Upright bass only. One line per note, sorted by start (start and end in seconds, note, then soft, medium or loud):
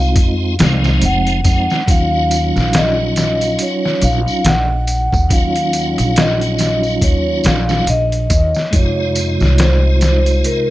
0.00 0.12 C2 medium
0.16 0.55 F2 medium
0.60 0.98 C2 medium
1.03 1.41 F1 medium
1.45 1.67 F2 medium
1.88 2.51 D#2 medium
2.56 3.56 A#1 medium
4.02 4.24 A#1 loud
4.45 5.08 A#1 medium
5.13 5.94 D#2 medium
5.98 6.98 A#1 medium
7.02 7.40 D#2 medium
7.45 7.83 A#1 medium
7.87 8.26 A#1 medium
8.30 8.52 D#2 loud
8.73 9.36 F2 medium
9.41 10.41 C2 medium